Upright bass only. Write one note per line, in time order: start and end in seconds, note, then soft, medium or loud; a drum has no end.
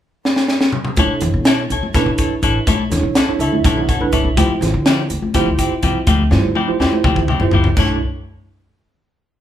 0.97 1.08 B1 medium
1.10 muted upright bass stroke soft
1.22 1.32 F#2 medium
1.34 1.65 B2 medium
1.70 1.81 B1 medium
1.82 muted upright bass stroke soft
1.95 2.05 B2 medium
2.06 2.27 B1 medium
2.30 muted upright bass stroke soft
2.42 2.53 A1 medium
2.67 2.88 B1 medium
2.91 3.02 E2 medium
3.03 3.14 B1 medium
3.28 muted upright bass stroke soft
3.39 3.60 D2 medium
3.65 3.96 B1 loud
4.01 4.11 D2 medium
4.13 4.23 B1 medium
4.25 4.37 B1 medium
4.37 4.48 D2 medium
4.48 muted upright bass stroke soft
4.61 4.72 A1 medium
4.74 5.05 D3 medium
5.10 5.20 D2 medium
5.23 muted upright bass stroke soft
5.35 5.45 D3 medium
5.46 5.67 D2 medium
5.72 muted upright bass stroke soft
5.83 5.93 C2 medium
6.07 6.28 D2 medium
6.32 6.42 G2 medium
6.45 6.55 D2 medium
6.69 muted upright bass stroke soft
6.79 7.00 F2 medium
7.05 7.36 D2 medium
7.41 7.51 F2 medium
7.53 7.63 D2 medium
7.65 7.75 C2 medium
7.77 7.99 B1 medium